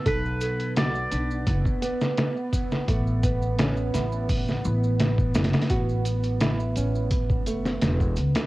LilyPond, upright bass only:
\new Staff \with { instrumentName = "Upright bass" } { \clef bass \time 4/4 \key a \mixolydian \tempo 4 = 85 b,,4. b,,8 fis,,8 r4. | a,,4. a,,4 a,,4 fis,,8 | a,,4. a,,4 fis,,8 e,,8 cis,8 | }